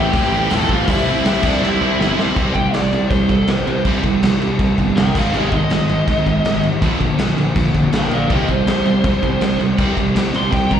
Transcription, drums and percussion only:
0.13 kick, open hi-hat
0.50 snare, open hi-hat
0.69 kick
0.87 kick, open hi-hat
1.25 snare, open hi-hat
1.43 kick, crash
1.63 snare
2.01 snare
2.19 snare
2.36 kick, crash
2.55 kick, crash
2.74 snare, crash
2.93 crash
3.10 kick, crash
3.29 kick, crash
3.47 snare, crash
3.67 crash
3.85 kick, crash
4.03 kick, crash
4.23 snare, crash
4.42 crash
4.59 kick, crash
4.78 kick, crash
4.97 snare, crash
5.15 kick, crash
5.33 crash
5.52 kick, crash
5.70 snare, crash
5.89 crash
6.08 kick, crash
6.26 kick, crash
6.45 snare, crash
6.63 crash
6.82 kick, crash
7.01 kick, crash
7.19 snare, crash
7.38 crash
7.56 kick, crash
7.74 kick, crash
7.93 snare, crash
8.11 crash
8.30 kick, crash
8.49 kick, crash
8.67 snare, crash
8.86 crash
9.04 kick, crash
9.23 kick, crash
9.41 snare, crash
9.60 crash
9.79 kick, crash
9.97 kick, crash
10.16 snare, crash
10.34 crash
10.53 kick, crash
10.71 kick, crash

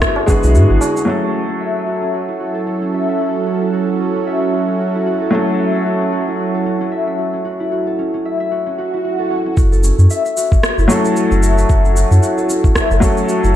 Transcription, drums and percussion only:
0.02 kick, cross-stick, shaker
0.16 tabla na, tabla tin
0.28 kick, shaker
0.43 tabla tin, shaker
0.55 shaker
0.81 tabla na, shaker
0.96 tabla tin, shaker
9.57 kick, shaker
9.73 shaker
9.84 shaker
9.99 shaker
10.10 shaker
10.26 shaker
10.37 shaker
10.52 kick, shaker
10.63 cross-stick, shaker
10.78 shaker
10.90 shaker
11.05 shaker
11.16 shaker
11.32 shaker
11.43 shaker
11.58 shaker
11.70 kick, shaker
11.85 shaker
11.97 shaker
12.12 shaker
12.23 shaker
12.38 shaker
12.50 shaker
12.64 kick, shaker
12.75 kick, cross-stick, shaker
12.91 shaker
13.02 kick, shaker
13.17 shaker
13.29 shaker
13.44 shaker

